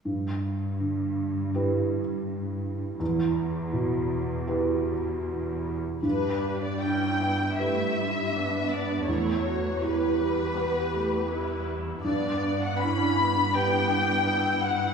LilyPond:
<<
  \new Staff \with { instrumentName = "Violin section" } { \time 4/4 \key g \lydian \tempo 4 = 81 r1 | r1 | b'8. d''16 g''4 e''4. d''8 | cis''4 b'2~ b'8 r8 |
d''8. fis''16 b''4 g''4. fis''8 | }
  \new Staff \with { instrumentName = "Felt piano" } { \time 4/4 \key g \lydian g,4 d4 <e' g' b'>2 | e,4 b,4 <e' g' b'>2 | g,4 d'4 <g' b'>2 | e,4 e'4 <g' b'>2 |
g,4 e'4 <g' b'>2 | }
  \new Staff \with { instrumentName = "Viola section" } { \time 4/4 \key g \lydian << { r1 | r1 | g'4 e'4 e'4 d'8 d'8 | e'8 fis'8 g'8 g'4. e'4 |
d'2 d'4 e'4 | } \\ { r1 | r1 | d'4 cis'8 b8 a8 g8 b4 | a4 g4 b8 a8 g4 |
b4 cis'8 b2~ b8 | } >> }
  \new Staff \with { instrumentName = "Cello section" } { \clef bass \time 4/4 \key g \lydian g,1 | e,2.~ e,8. r16 | g,1 | e,1 |
g,1 | }
>>